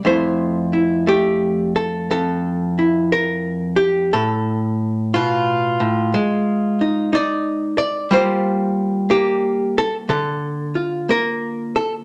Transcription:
0, 0, Header, 1, 2, 480
1, 0, Start_track
1, 0, Key_signature, -1, "major"
1, 0, Tempo, 1016949
1, 20, Time_signature, 4, 2, 24, 8
1, 2900, Tempo, 990099
1, 5760, End_track
2, 0, Start_track
2, 0, Title_t, "Hollow-body jazz guitar"
2, 0, Program_c, 0, 26
2, 22, Note_on_c, 0, 41, 58
2, 27, Note_on_c, 0, 57, 37
2, 29, Note_on_c, 0, 64, 44
2, 32, Note_on_c, 0, 72, 67
2, 340, Note_off_c, 0, 64, 0
2, 345, Note_on_c, 0, 64, 39
2, 500, Note_off_c, 0, 57, 0
2, 506, Note_on_c, 0, 57, 48
2, 512, Note_on_c, 0, 67, 73
2, 828, Note_off_c, 0, 67, 0
2, 829, Note_on_c, 0, 69, 72
2, 989, Note_off_c, 0, 41, 0
2, 991, Note_off_c, 0, 69, 0
2, 994, Note_on_c, 0, 41, 53
2, 997, Note_off_c, 0, 72, 0
2, 997, Note_on_c, 0, 69, 73
2, 1308, Note_off_c, 0, 64, 0
2, 1315, Note_on_c, 0, 64, 37
2, 1469, Note_off_c, 0, 57, 0
2, 1472, Note_off_c, 0, 69, 0
2, 1474, Note_on_c, 0, 70, 74
2, 1774, Note_off_c, 0, 70, 0
2, 1776, Note_on_c, 0, 67, 76
2, 1934, Note_off_c, 0, 64, 0
2, 1945, Note_off_c, 0, 67, 0
2, 1950, Note_off_c, 0, 41, 0
2, 1950, Note_on_c, 0, 69, 71
2, 1952, Note_on_c, 0, 45, 63
2, 2424, Note_off_c, 0, 69, 0
2, 2426, Note_on_c, 0, 65, 76
2, 2433, Note_on_c, 0, 47, 58
2, 2733, Note_off_c, 0, 45, 0
2, 2738, Note_on_c, 0, 45, 54
2, 2742, Note_off_c, 0, 47, 0
2, 2898, Note_on_c, 0, 56, 74
2, 2901, Note_off_c, 0, 45, 0
2, 3224, Note_on_c, 0, 63, 41
2, 3372, Note_off_c, 0, 63, 0
2, 3378, Note_on_c, 0, 63, 61
2, 3379, Note_off_c, 0, 65, 0
2, 3388, Note_on_c, 0, 74, 96
2, 3688, Note_off_c, 0, 74, 0
2, 3694, Note_on_c, 0, 74, 90
2, 3832, Note_off_c, 0, 56, 0
2, 3833, Note_off_c, 0, 63, 0
2, 3852, Note_on_c, 0, 55, 76
2, 3855, Note_off_c, 0, 74, 0
2, 3857, Note_on_c, 0, 58, 51
2, 3860, Note_on_c, 0, 65, 50
2, 3863, Note_on_c, 0, 67, 49
2, 3865, Note_on_c, 0, 72, 72
2, 4327, Note_off_c, 0, 58, 0
2, 4332, Note_on_c, 0, 58, 54
2, 4335, Note_off_c, 0, 67, 0
2, 4336, Note_on_c, 0, 67, 80
2, 4651, Note_off_c, 0, 67, 0
2, 4663, Note_on_c, 0, 69, 91
2, 4740, Note_off_c, 0, 69, 0
2, 4813, Note_on_c, 0, 50, 61
2, 4816, Note_on_c, 0, 69, 79
2, 4819, Note_off_c, 0, 72, 0
2, 5129, Note_off_c, 0, 65, 0
2, 5134, Note_on_c, 0, 65, 37
2, 5293, Note_off_c, 0, 58, 0
2, 5298, Note_off_c, 0, 69, 0
2, 5299, Note_on_c, 0, 58, 56
2, 5305, Note_on_c, 0, 70, 86
2, 5620, Note_off_c, 0, 70, 0
2, 5622, Note_on_c, 0, 69, 81
2, 5699, Note_off_c, 0, 69, 0
2, 5760, Note_off_c, 0, 50, 0
2, 5760, Note_off_c, 0, 55, 0
2, 5760, Note_off_c, 0, 58, 0
2, 5760, Note_off_c, 0, 65, 0
2, 5760, End_track
0, 0, End_of_file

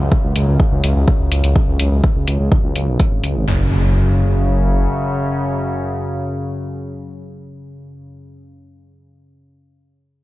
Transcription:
0, 0, Header, 1, 5, 480
1, 0, Start_track
1, 0, Tempo, 480000
1, 1556, Time_signature, 4, 2, 24, 8
1, 10237, End_track
2, 0, Start_track
2, 0, Title_t, "Synth drone"
2, 0, Program_c, 0, 95
2, 0, Note_on_c, 0, 42, 79
2, 0, Note_on_c, 0, 49, 81
2, 3465, Note_off_c, 0, 42, 0
2, 3465, Note_off_c, 0, 49, 0
2, 3477, Note_on_c, 0, 42, 70
2, 3477, Note_on_c, 0, 49, 75
2, 8068, Note_off_c, 0, 42, 0
2, 8068, Note_off_c, 0, 49, 0
2, 10237, End_track
3, 0, Start_track
3, 0, Title_t, "Detuned saw bass"
3, 0, Program_c, 1, 39
3, 240, Note_on_c, 1, 37, 84
3, 339, Note_off_c, 1, 37, 0
3, 357, Note_on_c, 1, 37, 98
3, 460, Note_off_c, 1, 37, 0
3, 479, Note_on_c, 1, 37, 87
3, 578, Note_off_c, 1, 37, 0
3, 718, Note_on_c, 1, 37, 84
3, 818, Note_off_c, 1, 37, 0
3, 836, Note_on_c, 1, 37, 98
3, 940, Note_off_c, 1, 37, 0
3, 959, Note_on_c, 1, 37, 92
3, 1058, Note_off_c, 1, 37, 0
3, 1199, Note_on_c, 1, 37, 81
3, 1298, Note_off_c, 1, 37, 0
3, 1317, Note_on_c, 1, 37, 90
3, 1420, Note_off_c, 1, 37, 0
3, 1439, Note_on_c, 1, 37, 89
3, 1538, Note_off_c, 1, 37, 0
3, 1679, Note_on_c, 1, 37, 87
3, 1778, Note_off_c, 1, 37, 0
3, 1797, Note_on_c, 1, 37, 86
3, 1900, Note_off_c, 1, 37, 0
3, 1918, Note_on_c, 1, 37, 80
3, 2018, Note_off_c, 1, 37, 0
3, 2159, Note_on_c, 1, 37, 77
3, 2258, Note_off_c, 1, 37, 0
3, 2277, Note_on_c, 1, 37, 99
3, 2380, Note_off_c, 1, 37, 0
3, 2399, Note_on_c, 1, 37, 92
3, 2498, Note_off_c, 1, 37, 0
3, 2639, Note_on_c, 1, 37, 84
3, 2738, Note_off_c, 1, 37, 0
3, 2757, Note_on_c, 1, 37, 96
3, 2878, Note_on_c, 1, 35, 92
3, 2893, Note_off_c, 1, 37, 0
3, 2978, Note_off_c, 1, 35, 0
3, 3118, Note_on_c, 1, 32, 83
3, 3218, Note_off_c, 1, 32, 0
3, 3236, Note_on_c, 1, 37, 95
3, 3357, Note_on_c, 1, 32, 90
3, 3372, Note_off_c, 1, 37, 0
3, 3458, Note_off_c, 1, 32, 0
3, 3475, Note_on_c, 1, 30, 89
3, 4876, Note_off_c, 1, 30, 0
3, 10237, End_track
4, 0, Start_track
4, 0, Title_t, "Impact"
4, 0, Program_c, 2, 103
4, 3476, Note_on_c, 2, 60, 60
4, 8107, Note_off_c, 2, 60, 0
4, 10237, End_track
5, 0, Start_track
5, 0, Title_t, "Drums"
5, 117, Note_on_c, 9, 36, 106
5, 217, Note_off_c, 9, 36, 0
5, 357, Note_on_c, 9, 42, 95
5, 457, Note_off_c, 9, 42, 0
5, 597, Note_on_c, 9, 36, 109
5, 697, Note_off_c, 9, 36, 0
5, 837, Note_on_c, 9, 42, 90
5, 937, Note_off_c, 9, 42, 0
5, 1077, Note_on_c, 9, 36, 102
5, 1177, Note_off_c, 9, 36, 0
5, 1316, Note_on_c, 9, 42, 89
5, 1416, Note_off_c, 9, 42, 0
5, 1438, Note_on_c, 9, 42, 48
5, 1538, Note_off_c, 9, 42, 0
5, 1557, Note_on_c, 9, 36, 107
5, 1657, Note_off_c, 9, 36, 0
5, 1795, Note_on_c, 9, 42, 96
5, 1895, Note_off_c, 9, 42, 0
5, 2037, Note_on_c, 9, 36, 104
5, 2137, Note_off_c, 9, 36, 0
5, 2276, Note_on_c, 9, 42, 101
5, 2376, Note_off_c, 9, 42, 0
5, 2517, Note_on_c, 9, 36, 109
5, 2617, Note_off_c, 9, 36, 0
5, 2756, Note_on_c, 9, 42, 91
5, 2856, Note_off_c, 9, 42, 0
5, 2996, Note_on_c, 9, 42, 49
5, 2997, Note_on_c, 9, 36, 100
5, 3096, Note_off_c, 9, 42, 0
5, 3097, Note_off_c, 9, 36, 0
5, 3236, Note_on_c, 9, 42, 95
5, 3336, Note_off_c, 9, 42, 0
5, 10237, End_track
0, 0, End_of_file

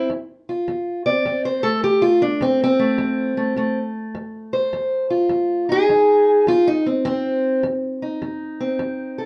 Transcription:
0, 0, Header, 1, 2, 480
1, 0, Start_track
1, 0, Tempo, 579710
1, 73, Time_signature, 4, 2, 24, 8
1, 7664, End_track
2, 0, Start_track
2, 0, Title_t, "Steel-string acoustic guitar"
2, 0, Program_c, 0, 25
2, 81, Note_on_c, 0, 41, 59
2, 406, Note_on_c, 0, 65, 42
2, 523, Note_off_c, 0, 41, 0
2, 561, Note_on_c, 0, 41, 68
2, 873, Note_off_c, 0, 65, 0
2, 876, Note_on_c, 0, 74, 79
2, 883, Note_on_c, 0, 60, 46
2, 1003, Note_off_c, 0, 41, 0
2, 1038, Note_on_c, 0, 41, 64
2, 1043, Note_off_c, 0, 60, 0
2, 1046, Note_on_c, 0, 60, 40
2, 1193, Note_off_c, 0, 74, 0
2, 1202, Note_on_c, 0, 72, 72
2, 1346, Note_off_c, 0, 60, 0
2, 1350, Note_on_c, 0, 69, 79
2, 1356, Note_on_c, 0, 57, 45
2, 1357, Note_off_c, 0, 72, 0
2, 1482, Note_off_c, 0, 41, 0
2, 1510, Note_off_c, 0, 69, 0
2, 1516, Note_on_c, 0, 41, 66
2, 1521, Note_on_c, 0, 67, 82
2, 1671, Note_on_c, 0, 65, 82
2, 1676, Note_off_c, 0, 67, 0
2, 1831, Note_off_c, 0, 65, 0
2, 1838, Note_on_c, 0, 62, 75
2, 1960, Note_off_c, 0, 41, 0
2, 1993, Note_on_c, 0, 41, 68
2, 1994, Note_off_c, 0, 62, 0
2, 2005, Note_on_c, 0, 60, 80
2, 2158, Note_off_c, 0, 60, 0
2, 2183, Note_on_c, 0, 60, 94
2, 2311, Note_off_c, 0, 57, 0
2, 2314, Note_on_c, 0, 57, 47
2, 2439, Note_off_c, 0, 41, 0
2, 2468, Note_on_c, 0, 41, 74
2, 2789, Note_off_c, 0, 57, 0
2, 2793, Note_on_c, 0, 57, 46
2, 2916, Note_off_c, 0, 41, 0
2, 2951, Note_on_c, 0, 41, 62
2, 2956, Note_off_c, 0, 57, 0
2, 2959, Note_on_c, 0, 57, 43
2, 3127, Note_off_c, 0, 60, 0
2, 3398, Note_off_c, 0, 41, 0
2, 3433, Note_on_c, 0, 41, 64
2, 3751, Note_on_c, 0, 72, 51
2, 3879, Note_off_c, 0, 41, 0
2, 3916, Note_on_c, 0, 41, 67
2, 4223, Note_off_c, 0, 72, 0
2, 4226, Note_on_c, 0, 65, 46
2, 4361, Note_off_c, 0, 41, 0
2, 4383, Note_on_c, 0, 41, 72
2, 4711, Note_on_c, 0, 63, 48
2, 4731, Note_off_c, 0, 65, 0
2, 4734, Note_on_c, 0, 68, 104
2, 4736, Note_off_c, 0, 57, 0
2, 4835, Note_off_c, 0, 41, 0
2, 4878, Note_on_c, 0, 41, 63
2, 4880, Note_off_c, 0, 63, 0
2, 4883, Note_on_c, 0, 63, 42
2, 5322, Note_off_c, 0, 41, 0
2, 5357, Note_on_c, 0, 41, 74
2, 5364, Note_off_c, 0, 68, 0
2, 5367, Note_on_c, 0, 65, 85
2, 5518, Note_off_c, 0, 63, 0
2, 5520, Note_off_c, 0, 65, 0
2, 5527, Note_on_c, 0, 63, 84
2, 5680, Note_off_c, 0, 63, 0
2, 5683, Note_on_c, 0, 60, 47
2, 5802, Note_off_c, 0, 41, 0
2, 5837, Note_off_c, 0, 60, 0
2, 5837, Note_on_c, 0, 60, 88
2, 5842, Note_on_c, 0, 41, 67
2, 6285, Note_off_c, 0, 41, 0
2, 6316, Note_off_c, 0, 60, 0
2, 6320, Note_on_c, 0, 41, 70
2, 6643, Note_on_c, 0, 63, 46
2, 6765, Note_off_c, 0, 41, 0
2, 6804, Note_on_c, 0, 41, 64
2, 7125, Note_on_c, 0, 60, 46
2, 7247, Note_off_c, 0, 41, 0
2, 7279, Note_on_c, 0, 41, 65
2, 7604, Note_on_c, 0, 69, 49
2, 7664, Note_off_c, 0, 41, 0
2, 7664, Note_off_c, 0, 60, 0
2, 7664, Note_off_c, 0, 63, 0
2, 7664, Note_off_c, 0, 69, 0
2, 7664, End_track
0, 0, End_of_file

